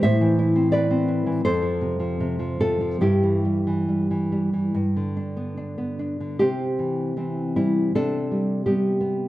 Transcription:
\new Staff \with { instrumentName = "Nylon-string guitar" } { \time 4/4 \key c \major \tempo 4 = 78 << { <c'' e''>4 <b' d''>4 <a' c''>4. <f' a'>8 | <e' g'>2.~ <e' g'>8 r8 | <c' g'>4. <g e'>8 <d' a'>4 <b g'>4 | } \\ { a,16 e16 e'16 c'16 e'16 c'16 e'16 e16 f,16 f16 c16 f16 c16 f16 c16 f16 | g,16 e16 g16 e16 g16 e16 g16 e16 g,16 d16 d'16 b16 d'16 b16 d'16 d16 | c8 e8 <e c'>8 c'8 c8 g8 g8 b8 | } >> }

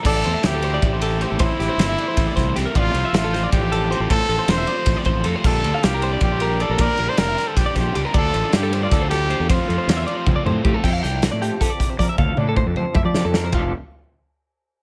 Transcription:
<<
  \new Staff \with { instrumentName = "Clean electric guitar" } { \time 7/8 \key f \major \tempo 4 = 156 d''8 c''16 e''8 a'16 c''16 d''8 c''16 a'8 c''16 a'16 | c''8 g'16 c''8 e''16 d''16 c''8 d''16 c''8 g'16 bes'16 | d''8 c''16 e''8 a'16 c''16 d''8 c''16 a'8 c''16 a'16 | c''8 a'16 c''8 e''16 d''16 c''8 d''16 c''8 a'16 c''16 |
e''8 d''16 f''8 bes'16 c''16 d''8 c''16 bes'8 d''16 bes'16 | d''8 bes'16 d''8 e''16 d''16 c''8 d''16 c''8 g'16 bes'16 | d''8 c''16 d''8 a'16 c''16 d''8 c''16 a'8 c''16 a'16 | c''8 a'16 c''8 e''16 d''16 c''8 d''16 c''8 g'16 a'16 |
g''16 f''16 g''8 r16 d''16 g'8 a'16 d''8 c''16 d''16 e''16 | f''8 d''16 a'16 c''16 a'16 c''8 e''16 d''8 a'8 c''16 | f'8 r2. | }
  \new Staff \with { instrumentName = "Trumpet" } { \time 7/8 \key f \major a'4 g'4 g'4. | e'2. r8 | f'4 f'4 g'4. | a'4 c''4~ c''16 r4 r16 |
a'4 g'4 g'4 a'8 | bes'8. c''16 bes'8. a'16 g'4 r8 | a'4 g'8. f'16 a'8 g'4 | f'2~ f'8 r4 |
r2. r8 | r2. r8 | r2. r8 | }
  \new Staff \with { instrumentName = "Clean electric guitar" } { \time 7/8 \key f \major << { r2. r8 | r2. r8 | r2. r8 | r2. r8 |
r2. r8 | r2. r8 | r2. r8 | r2. r8 |
a'8 d'4. g'4 bes'8 | a'8 d'4. g'4 bes'8 | <f d' g' a'>8 r2. | } \\ { r2. r8 | r2. r8 | r2. r8 | r2. r8 |
r2. r8 | r2. r8 | r2. r8 | r2. r8 |
f,4. f4 c4 | f,4. f4 c4 | f,8 r2. | } >> }
  \new Staff \with { instrumentName = "Overdriven electric guitar" } { \time 7/8 \key f \major <a, e a c' e'>8 <a c' e'>8 <e a c' e'>8 <a c' e'>4. <a, e a c' e'>8 | <a, e a c' e'>8 <a c' e'>8 <e a c' e'>8 <a c' e'>4. <a, e a c' e'>8 | <a, f a c' f'>8 <a c' f'>8 <f a c' f'>8 <a c' f'>4. <a, f a c' f'>8 | <a, f a c' f'>8 <a c' f'>8 <f a c' f'>8 <a c' f'>4. <a, f a c' f'>8 |
<bes, d g d' g'>8 <g d' g'>8 <d g d' g'>8 <g d' g'>4. <bes, d g d' g'>8 | <bes, d g d' g'>8 <g d' g'>8 <d g d' g'>8 <g d' g'>4. <bes, d g d' g'>8 | <d a d' f'>8 <a d' f'>8 <d a d' f'>8 <a d' f'>4. <d a d' f'>8 | <f a c' f'>8 <a c' f'>8 <f a c' f'>8 <a c' f'>4. <f a c' f'>8 |
r2. r8 | r2. r8 | r2. r8 | }
  \new Staff \with { instrumentName = "Fingered electric bass" } { \clef bass \time 7/8 \key f \major a,,8 e,16 r16 d,4 a,,4~ a,,16 a,,16 | a,,16 r16 a,,16 r16 g,,8 r8 a,,16 r16 c,8 c,16 r16 | a,,8 c,16 r16 a,,4 a,,4~ a,,16 a,,16 | a,,16 r16 a,,16 r16 e,,8 r8 a,,16 r16 a,,8 f,16 r16 |
bes,,8 d,16 r16 c,4 bes,,4~ bes,,16 bes,,16 | bes,,16 r16 bes,,16 r16 f,,8 r8 bes,,16 r16 bes,,8 des,16 r16 | d,8 a,,16 r16 g,4 d,4~ d,16 e,16 | f,16 r16 f,16 r16 e,8 r8 f,16 r16 a,8 a,16 r16 |
f,8 c,8. a,8 r4 r16 f16 r16 | d,8 a,8. f,8 r8 f8 f,8. | f,,8 r2. | }
  \new DrumStaff \with { instrumentName = "Drums" } \drummode { \time 7/8 <cymc bd>8 cymr8 <cymr sn>8 cymr8 <bd cymr>8 cymr8 cymr8 | <bd cymr>8 <cymr sn>8 <cymr sn>8 cymr8 <bd cymr>8 <bd cymr sn>8 <cymr sn>8 | <bd cymr>8 cymr8 <cymr sn>8 <cymr sn>8 <bd cymr>8 cymr8 cymr8 | <bd cymr>8 cymr8 <cymr sn>8 cymr8 <bd cymr>8 <bd cymr>8 cymr8 |
<cymc bd>8 cymr8 <cymr sn>8 cymr8 <bd cymr>8 cymr8 cymr8 | <bd cymr>8 cymr8 <cymr sn>8 <cymr sn>8 <bd cymr sn>8 <bd cymr sn>8 cymr8 | <bd cymr>8 cymr8 <cymr sn>8 cymr8 <bd cymr sn>8 <cymr sn>8 cymr8 | <bd cymr>8 cymr8 <cymr sn>8 cymr8 <bd tommh>8 toml8 bd8 |
<cymc bd>8 <hh sn>8 <hh sn>8 hh8 <hh bd>8 <hh bd>8 <hh bd>8 | <bd tommh>8 tommh8 bd8 toml8 <bd toml>8 sn8 sn8 | <bd rb tomfh>4 r4 r4. | }
>>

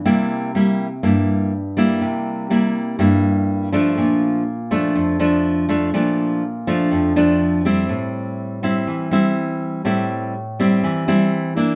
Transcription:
\new Staff \with { instrumentName = "Nylon-string guitar" } { \time 4/4 \key c \mixolydian \tempo 4 = 122 << { <g bes e'>4 <g bes e'>8 r8 <g bes e'>4 r8 <g bes e'>8~ | <g bes e'>4 <g bes e'>4 <g bes e'>4. <f a d'>8~ | <f a d'>4 r8 <f a d'>4 <f a d'>4 <f a d'>8 | <f a d'>4 r8 <f a d'>4 <f a d'>4 <g c' e'>8~ |
<g c' e'>4. <g c' e'>4 <g c' e'>4. | <g c' e'>4 r8 <g c' e'>4 <g c' e'>4 <bes d' e'>8 | } \\ { c2 g,2 | c2 g,2 | bes,2 f,2 | bes,2 f,2 |
a,2 e2 | a,2 e2 | } >> }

